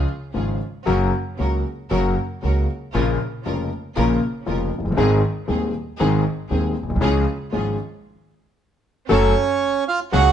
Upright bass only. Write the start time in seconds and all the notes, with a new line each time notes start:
0.35 G#1
0.87 F#1
1.40 C#2
1.91 F#1
2.44 C#2
2.95 A#1
3.47 F1
3.97 A#1
4.48 F1
4.80 F1
4.86 F#1
4.92 G1
4.98 G#1
5.49 D#2
6.01 G#1
6.51 D#2
6.83 A#1
6.90 B1
6.96 C2
7.02 C#2
7.54 G#1
9.11 F#1
10.13 C#2